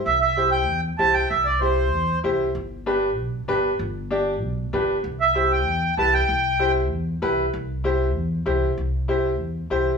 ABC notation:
X:1
M:4/4
L:1/8
Q:1/4=193
K:C
V:1 name="Accordion"
e e2 g2 z a g | e d c4 z2 | z8 | z8 |
z e2 g3 a g- | g3 z4 z | z8 | z8 |]
V:2 name="Upright piano"
z2 [EGc] z3 [EGc] z | z2 [EGc] z3 [EGc] z | z2 [DGB] z3 [DGB] z | z2 [DGd] z3 [DGB] z |
z2 [EGc] z3 [EGB] z | z2 [EGc] z3 [EGB] z | z2 [EGc] z3 [EGc] z | z2 [EGc] z3 [EGc] z |]
V:3 name="Upright bass" clef=bass
C,,4 E,,2 C,,2 | C,,4 E,,2 C,,2 | G,,,4 B,,,2 G,,,2 | G,,,4 B,,,2 G,,,2 |
C,,4 E,,2 C,,2 | C,,4 E,,2 C,,2 | C,,4 E,,2 C,,2 | C,,4 E,,2 C,,2 |]